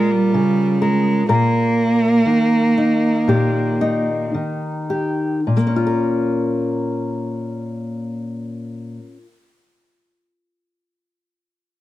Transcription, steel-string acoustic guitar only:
Already playing: A#2 F4 A#4
0.34 C#3
0.82 A#4
1.29 A#2 A#4
2.26 D#3
2.78 D#4
3.28 A#2 G4
3.81 D#4
4.34 D#3
4.90 G4
5.47 A#2
5.57 A#3
5.67 C#4
5.76 F4
5.87 A#4

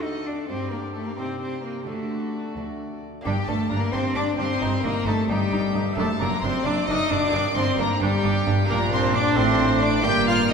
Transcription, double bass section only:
3.25 G1
3.49 G1
3.71 G1
3.93 G1
4.16 G1
4.39 G1
4.61 G1
4.84 G1
5.06 G1
5.29 G1
5.52 G1
5.75 G1
5.98 F#1
6.20 F#1
6.43 F#1
6.66 F#1
6.88 F#1
7.11 F#1
7.33 G1
7.56 G1
7.78 G1
8.01 G1
8.23 G1
8.47 G1
8.68 A#1
9.36 A1
10.04 G1

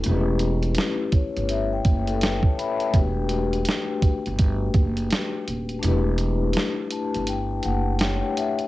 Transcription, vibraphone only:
0.01 A3 C#4
0.05 E4 G4
0.10 B4
1.14 C#5
1.50 E5
1.73 G5
2.09 A4
2.23 B4 G5
2.45 C#5 A5
2.58 E5 B5
2.81 G5
2.90 A3 D4
2.94 F#4 G4
2.98 B4
5.79 A3 D4
5.84 E4 G4
5.88 B4
6.92 A5
7.28 G5
7.65 F#5
7.98 A3 D4 G4 F#5 G5
8.03 C#5
8.37 E5

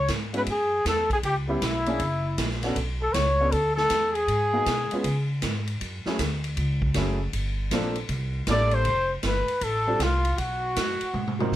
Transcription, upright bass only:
0.09 G#2
0.46 F#2
0.85 E2
1.23 C#2
1.62 B1
1.99 F#1
2.38 A#1
2.76 B1
3.14 C#2
3.52 D2
4.27 G#2
4.66 B2
4.91 muted upright bass stroke
5.04 C#3
5.42 G#2
5.81 F#2
6.05 muted upright bass stroke
6.19 D2
6.57 C#2
6.95 F#1
7.33 G1
7.71 A#1
8.09 C2
8.47 A1
8.85 F1
9.23 G1
9.49 muted upright bass stroke
9.61 A1
9.99 C2
10.38 B1
10.76 F#2
11.01 muted upright bass stroke
11.13 G#2
11.52 C3

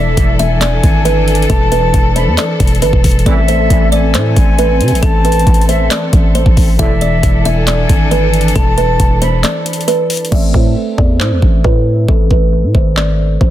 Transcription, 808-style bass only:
Already playing: E1
0.17 E1
0.84 G#1
1.50 E1
1.94 E1
2.27 E2
2.60 E1
2.82 G#1
2.93 E1
3.04 E1
3.26 A1
3.70 A1
4.14 A2
4.36 A1
4.81 C3
4.92 A1
5.03 A1
5.47 A1
6.13 A1
6.46 A1
6.57 A1
6.79 E1
7.23 E1
7.89 G#1
8.56 E1
9.00 E1
10.32 A1
10.54 A2
10.98 E2
11.20 A2
11.31 E2
11.42 A1
11.64 A2
12.08 A1
12.31 A1
12.64 A2
12.75 G#1
13.41 A1

